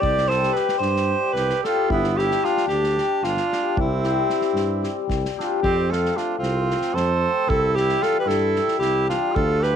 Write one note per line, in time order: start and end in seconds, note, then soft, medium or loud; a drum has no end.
0.00 0.49 C2 medium
0.00 0.29 G3 medium
0.00 0.31 G4 medium
0.00 0.30 D5 loud
0.00 kick medium
0.18 snare soft
0.28 0.53 G3 medium
0.28 0.48 C4 medium
0.28 0.49 E4 medium
0.28 0.58 A4 medium
0.28 0.54 C5 loud
0.28 snare soft
0.32 0.49 G4 medium
0.43 snare soft
0.53 1.08 G3 medium
0.53 0.73 C4 medium
0.53 0.74 E4 soft
0.53 0.80 G4 medium
0.53 0.78 B4 medium
0.53 snare soft
0.57 0.74 G4 medium
0.69 snare soft
0.78 1.14 G2 medium
0.78 1.36 G4 medium
0.78 1.34 C5 medium
0.78 snare soft
0.96 snare soft
1.09 1.62 G3 medium
1.09 1.28 C4 soft
1.09 1.28 E4 soft
1.09 1.28 G4 medium
1.33 1.52 C2 medium
1.33 1.65 G4 medium
1.33 1.63 B4 loud
1.33 snare soft
1.50 snare soft
1.63 1.96 G3 medium
1.63 1.82 C4 medium
1.63 1.82 E4 medium
1.63 1.89 F4 medium
1.63 1.82 G4 medium
1.63 1.88 A4 medium
1.63 snare soft
1.88 2.36 G1 loud
1.88 2.19 E4 medium
1.88 kick medium
1.93 2.21 B3 medium
2.04 snare soft
2.15 2.42 G3 medium
2.15 2.35 B3 medium
2.15 2.35 D4 medium
2.15 2.46 G4 medium
2.15 2.35 G4 medium
2.15 snare soft
2.20 2.47 E4 medium
2.31 snare soft
2.43 2.94 G3 medium
2.43 2.60 B3 medium
2.43 2.61 D4 soft
2.43 2.70 D4 medium
2.43 2.67 F4 medium
2.43 2.61 G4 medium
2.43 snare soft
2.57 snare soft
2.67 3.00 D2 medium
2.67 3.26 D4 medium
2.67 3.25 G4 medium
2.67 snare soft
2.84 snare soft
2.95 3.50 G3 soft
2.95 3.14 B3 medium
2.95 3.14 D4 soft
2.95 3.15 G4 medium
2.95 snare soft
3.22 3.39 G1 medium
3.22 3.78 F4 medium
3.22 snare soft
3.26 3.79 D4 medium
3.37 snare soft
3.51 3.83 G3 medium
3.51 3.69 B3 medium
3.51 3.69 D4 medium
3.51 3.70 G4 medium
3.51 snare soft
3.77 4.24 C2 loud
3.77 5.07 E4 medium
3.77 kick medium
3.82 5.08 C4 medium
4.03 4.27 G3 medium
4.03 4.22 C4 medium
4.03 4.22 E4 medium
4.03 4.22 G4 medium
4.03 snare soft
4.28 4.81 G3 medium
4.28 4.46 C4 soft
4.28 4.47 E4 medium
4.28 4.47 G4 medium
4.28 snare soft
4.42 snare soft
4.53 4.87 G2 medium
4.53 snare soft
4.82 5.36 G3 medium
4.82 5.01 C4 medium
4.82 5.01 E4 medium
4.82 5.01 G4 medium
4.82 snare soft
5.08 5.26 C2 medium
5.08 kick medium
5.08 snare soft
5.25 snare soft
5.37 5.69 G3 medium
5.37 5.55 C4 medium
5.37 5.62 D4 medium
5.37 5.56 E4 medium
5.37 5.61 F4 medium
5.37 5.56 G4 medium
5.37 snare soft
5.62 6.10 F2 medium
5.62 5.93 C4 medium
5.62 5.92 G4 loud
5.62 kick medium
5.91 6.14 F3 medium
5.91 6.08 A3 medium
5.91 6.09 C4 medium
5.91 6.17 F4 medium
5.91 6.09 F4 medium
5.91 6.19 A4 medium
5.91 snare soft
6.05 snare soft
6.15 6.68 F3 medium
6.15 6.33 A3 soft
6.15 6.33 C4 medium
6.15 6.38 D4 medium
6.15 6.34 F4 medium
6.15 6.37 F4 medium
6.15 snare soft
6.38 6.73 C2 medium
6.38 6.95 C4 medium
6.38 6.96 F4 medium
6.43 snare soft
6.69 7.23 F3 medium
6.69 6.88 A3 soft
6.69 6.88 C4 soft
6.69 6.89 F4 medium
6.69 snare soft
6.81 snare soft
6.94 7.27 F2 medium
6.94 7.51 A4 medium
6.94 7.51 C5 medium
6.94 snare soft
7.24 7.55 F3 medium
7.24 7.42 A3 medium
7.24 7.43 C4 medium
7.24 7.43 F4 medium
7.48 7.95 C2 medium
7.48 7.78 E4 medium
7.48 7.77 A4 loud
7.48 kick medium
7.76 8.01 E3 medium
7.76 8.02 G3 medium
7.76 7.95 C4 medium
7.76 8.03 E4 medium
7.76 7.95 E4 medium
7.76 8.04 G4 medium
7.76 snare soft
7.89 snare soft
8.02 8.56 E3 medium
8.02 8.56 G3 medium
8.02 8.20 C4 medium
8.02 8.20 E4 medium
8.02 8.20 F4 medium
8.02 8.19 A4 loud
8.02 snare soft
8.19 8.27 G4 medium
8.19 8.29 B4 medium
8.26 8.59 G2 medium
8.26 8.80 E4 medium
8.26 8.78 A4 medium
8.26 snare soft
8.56 9.10 E3 soft
8.56 9.10 G3 medium
8.56 8.74 C4 soft
8.56 8.75 E4 medium
8.56 snare soft
8.68 snare soft
8.79 9.13 C2 medium
8.79 9.08 E4 medium
8.79 9.07 G4 medium
8.79 snare soft
9.08 9.41 E3 medium
9.08 9.42 G3 medium
9.08 9.29 C4 medium
9.08 9.34 D4 medium
9.08 9.29 E4 medium
9.08 9.37 F4 medium
9.08 snare soft
9.32 9.76 D2 loud
9.32 9.62 F4 medium
9.32 9.65 A4 loud
9.32 kick medium
9.61 9.76 F3 medium
9.61 9.76 A3 medium
9.61 9.76 D4 medium
9.61 9.76 G4 medium
9.61 9.76 B4 loud
9.61 snare soft
9.65 9.76 F4 medium